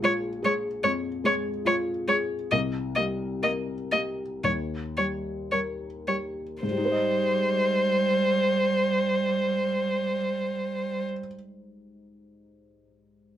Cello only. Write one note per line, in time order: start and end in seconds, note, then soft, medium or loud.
0.03 0.11 G#3 medium
0.44 0.52 G#3 medium
0.84 0.92 G#3 medium
1.25 1.33 G#3 medium
1.66 1.74 G#3 soft
2.08 2.16 G#3 soft
2.53 2.61 A#3 medium
2.97 3.05 A#3 soft
3.44 3.52 A#3 soft
3.93 4.01 A#3 soft
4.44 4.52 G3 soft
4.98 5.06 G3 soft
5.52 5.60 G3 soft
6.08 6.16 G3 soft
6.63 11.04 G3 soft